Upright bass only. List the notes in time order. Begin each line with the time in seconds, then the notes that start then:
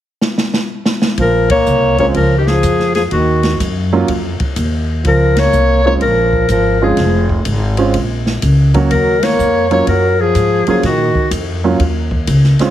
1.18 A#1
1.67 C2
2.15 C#2
2.63 F2
3.12 D#2
3.60 F#2
4.08 F2
4.40 muted upright bass stroke
4.56 D#2
5.05 C#2
5.53 C2
6.01 A#1
6.49 G#1
6.97 F1
7.46 G#1
7.94 A#1
8.43 C#2
8.90 D#2
9.39 F2
9.87 F#2
10.35 G#2
10.68 muted upright bass stroke
10.83 A#2
11.15 muted upright bass stroke
11.31 F2
11.79 D#2
12.28 C#2
12.60 muted upright bass stroke